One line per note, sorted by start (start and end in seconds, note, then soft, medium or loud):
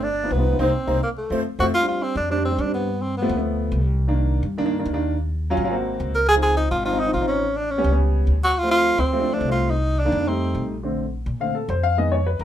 0.00 0.28 G1 medium
0.00 0.34 D4 medium
0.00 0.33 D5 medium
0.23 0.33 F3 medium
0.23 0.34 B3 medium
0.23 0.34 D#4 medium
0.31 0.57 C2 medium
0.31 0.62 B3 medium
0.31 0.59 B4 medium
0.38 0.48 F3 medium
0.38 0.48 B3 medium
0.38 0.48 D#4 medium
0.52 0.59 F3 medium
0.52 0.59 B3 medium
0.52 0.58 D#4 medium
0.59 0.70 C2 medium
0.59 0.69 A#3 loud
0.59 0.68 C4 loud
0.59 1.03 C4 medium
0.59 0.69 D#4 loud
0.59 0.69 C5 medium
0.87 0.98 C2 medium
0.87 0.97 A#3 medium
0.87 0.97 C4 medium
0.87 0.97 D#4 medium
0.87 0.97 C5 medium
1.04 1.10 A#3 medium
1.18 1.44 A3 medium
1.30 1.41 F2 medium
1.30 1.40 F3 medium
1.30 1.40 A3 medium
1.30 1.40 C4 medium
1.30 1.41 C5 loud
1.59 1.70 F2 medium
1.59 1.68 F3 medium
1.59 1.68 A3 medium
1.59 1.68 C4 medium
1.59 1.66 F#4 medium
1.59 1.69 C5 medium
1.75 1.87 F4 loud
1.80 2.15 G3 medium
1.80 2.15 C4 medium
1.80 2.16 D4 medium
1.88 2.05 F4 medium
2.03 2.17 C4 loud
2.16 2.56 F2 loud
2.16 2.30 D4 medium
2.30 2.35 G3 medium
2.30 2.35 C4 medium
2.30 2.35 D4 medium
2.30 2.44 D4 medium
2.37 2.47 G3 medium
2.37 2.47 C4 medium
2.37 2.47 D4 medium
2.45 2.62 C4 medium
2.51 2.61 G3 medium
2.51 2.61 C4 medium
2.51 2.62 D4 medium
2.58 3.24 G2 loud
2.58 2.74 D4 medium
2.65 2.87 G3 medium
2.65 2.87 C4 medium
2.65 2.87 D4 medium
2.74 3.04 B3 medium
3.02 3.16 C4 medium
3.18 3.43 B3 medium
3.22 3.32 F3 medium
3.22 3.33 A3 medium
3.22 3.33 B3 loud
3.29 3.69 D2 loud
3.36 3.76 F3 medium
3.36 3.77 A3 medium
3.36 3.77 B3 medium
3.72 4.38 C2 loud
4.08 4.43 D#3 medium
4.08 4.43 A#3 medium
4.08 4.43 D4 loud
4.43 4.83 G2 medium
4.57 4.63 D#3 medium
4.57 4.63 A#3 medium
4.57 4.63 D4 loud
4.65 4.75 D#3 medium
4.65 4.75 A#3 medium
4.65 4.75 D4 loud
4.79 4.89 D#3 medium
4.79 4.89 A#3 medium
4.79 4.89 D4 medium
4.85 5.52 D#2 loud
4.93 5.15 D#3 medium
4.93 5.15 A#3 medium
4.93 5.15 D4 loud
5.50 5.60 F#3 loud
5.50 5.60 C#4 loud
5.50 5.61 F4 loud
5.57 5.97 G#1 medium
5.64 5.71 F#3 medium
5.64 5.72 C#4 medium
5.64 5.72 F4 loud
5.71 6.17 A#3 medium
5.71 6.17 C4 medium
5.71 6.17 F#4 medium
6.00 6.66 C#2 loud
6.15 6.28 A#4 loud
6.29 6.35 G#4 loud
6.35 6.70 F3 medium
6.35 6.71 C4 medium
6.35 6.71 D#4 medium
6.43 6.56 G#4 loud
6.57 6.70 D#4 loud
6.71 7.11 G#1 loud
6.71 6.85 F4 medium
6.85 6.90 F3 medium
6.85 6.90 C4 medium
6.85 6.91 D#4 medium
6.85 7.01 F4 loud
6.92 7.02 F3 medium
6.92 7.03 C4 medium
6.92 7.03 D#4 medium
7.00 7.13 D#4 medium
7.06 7.17 F3 medium
7.06 7.17 C4 medium
7.06 7.17 D#4 medium
7.14 7.79 A1 medium
7.14 7.27 F4 medium
7.21 7.42 F3 medium
7.21 7.43 C4 medium
7.21 7.43 D#4 medium
7.28 7.58 C#4 medium
7.57 7.73 D4 medium
7.71 7.99 C#4 medium
7.78 7.88 G3 medium
7.78 7.88 B3 medium
7.78 7.88 C#4 loud
7.84 8.24 C#2 loud
7.92 8.32 G3 medium
7.92 8.32 B3 medium
7.92 8.32 C#4 medium
8.27 8.93 D2 loud
8.44 8.60 F#4 loud
8.58 8.71 F4 loud
8.63 8.98 F3 medium
8.63 8.98 A3 medium
8.63 8.98 C4 medium
8.71 9.01 F4 loud
8.98 9.38 D2 medium
8.98 9.35 C4 loud
9.13 9.18 F3 medium
9.13 9.18 A3 medium
9.13 9.18 C4 medium
9.19 9.30 F3 medium
9.19 9.30 A3 medium
9.19 9.30 D4 medium
9.33 9.44 F3 medium
9.33 9.44 A3 medium
9.33 9.45 C4 medium
9.33 9.51 D4 medium
9.41 10.07 C2 loud
9.48 9.70 F3 medium
9.48 9.70 A3 medium
9.48 9.70 C4 medium
9.48 9.72 F4 medium
9.70 10.01 D#4 loud
9.99 10.29 D4 loud
10.05 10.15 D#3 medium
10.05 10.15 A#3 medium
10.05 10.16 D4 loud
10.12 10.52 F2 loud
10.19 10.27 D#3 medium
10.19 10.27 A#3 medium
10.19 10.27 D4 medium
10.26 10.72 G3 medium
10.26 10.72 A3 medium
10.26 10.70 C4 medium
10.26 10.73 D#4 medium
10.55 11.21 A#1 medium
10.83 11.02 D3 medium
10.83 11.03 A3 medium
10.83 11.03 C4 medium
11.26 11.66 A#2 loud
11.40 11.53 D3 soft
11.40 11.53 A3 soft
11.40 11.54 C4 medium
11.40 11.55 F5 medium
11.55 11.69 A4 medium
11.69 12.35 F2 loud
11.69 11.83 C5 medium
11.83 11.97 F5 loud
11.97 12.16 D#3 medium
11.97 12.17 G#3 medium
11.97 12.17 B3 medium
11.97 12.12 D#5 medium
12.12 12.26 C#5 medium
12.27 12.40 B4 medium
12.39 12.44 E2 loud
12.39 12.44 A#4 medium